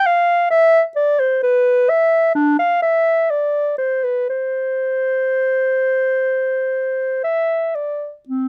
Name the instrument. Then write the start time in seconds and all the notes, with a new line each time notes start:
clarinet
0.06 F5
0.51 E5
0.96 D5
1.19 C5
1.43 B4
1.89 E5
2.35 D4
2.59 F5
2.82 E5
3.30 D5
3.78 C5
4.04 B4
4.29 C5
7.24 E5
7.75 D5
8.29 C4